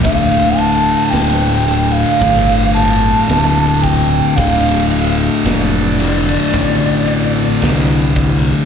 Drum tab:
RD |xxxxxxxx|xxxxxxxx|
SD |--o---o-|--o---o-|
BD |o---o--o|o---o--o|